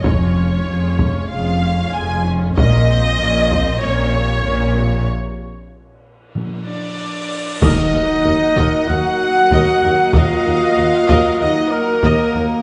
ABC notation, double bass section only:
X:1
M:4/4
L:1/8
Q:1/4=95
K:Bbm
V:1 name="Double bass section" clef=bass
F,,,2 F,,,2 F,,,2 F,,,2 | B,,,2 B,,,2 B,,,2 B,,,2 | z8 | [K:Ebm] E,, E,, E,, E,, E,, z E,, E,, |
E,, E,, E,, E,, E,, z E,, E,, |]